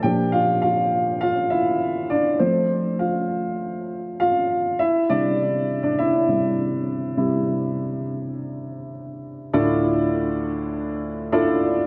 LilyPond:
<<
  \new Staff \with { instrumentName = "Upright piano" } { \time 4/4 \key d \minor \tempo 4 = 101 <g' g''>8 <f' f''>8 <f' f''>4 <f' f''>8 <e' e''>4 <d' d''>8 | c''4 <f' f''>4 r4 <f' f''>4 | <e' e''>8 <d' d''>4~ <d' d''>16 <d' d''>16 <e' e''>2~ | <e' e''>2. r4 |
<d' e' f' a' d''>4. r4. <d' e' f' a' d''>4 | }
  \new Staff \with { instrumentName = "Upright piano" } { \clef bass \time 4/4 \key d \minor <bes, f d'>1 | <f a c'>8 r2. r8 | r8 <c g e'>2 <c g e'>8 r4 | <c g e'>4. r2 r8 |
<d, a,>1 | }
>>